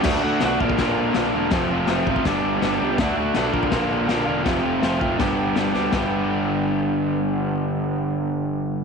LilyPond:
<<
  \new Staff \with { instrumentName = "Overdriven electric guitar" } { \time 4/4 \key g \mixolydian \tempo 4 = 163 <d a d' fis'>8 <a d' fis'>8 <d a d' fis'>8 <bes, d bes d' f'>8 <bes, d bes d' f'>4 <d bes d' f'>8 <bes d' f'>8 | <f, c f a c' f'>8 <f a c' f'>8 <f a c' f'>8 <f a c' f'>8 <g, d g b d' g'>4 <g b d' g'>8 <g b d' g'>8 | <d a d' fis'>8 <a d' fis'>8 <d a d' fis'>8 <bes, d bes d' f'>8 <bes, d bes d' f'>4 <d bes d' f'>8 <bes d' f'>8 | <f, c f a c' f'>8 <f a c' f'>8 <f a c' f'>8 <f a c' f'>8 <g, d g b d' g'>4 <g b d' g'>8 <g b d' g'>8 |
<g, d g b d' g'>1~ | <g, d g b d' g'>1 | }
  \new Staff \with { instrumentName = "Fretless electric bass" } { \clef bass \time 4/4 \key g \mixolydian d,8 d,8 b,,8 bes,,8 bes,,8 bes,,8 bes,,8 e,,8 | f,,8 f,,8 f,,8 a,,8 g,,8 g,,8 g,,8 cis,8 | d,8 d,8 b,,8 bes,,8 bes,,8 bes,,8 bes,,8 e,,8 | f,,8 f,,8 f,,8 f,,8 g,,8 g,,8 g,,8 d,8 |
g,,1~ | g,,1 | }
  \new DrumStaff \with { instrumentName = "Drums" } \drummode { \time 4/4 <cymc bd sn>4 <cymc sn>8 bd16 bd16 <cymc bd sn>4 <cymc sn>4 | <cymc bd sn>4 <cymc sn>8 bd16 bd16 <cymc bd sn>4 <cymc sn>4 | <cymc bd sn>4 <cymc sn>8 bd16 bd16 <cymc bd sn>4 <cymc sn>4 | <cymc bd sn>4 <cymc sn>8 bd8 <cymc bd sn>4 <cymc sn>8 sn8 |
<bd sn>4 r4 r4 r4 | r4 r4 r4 r4 | }
>>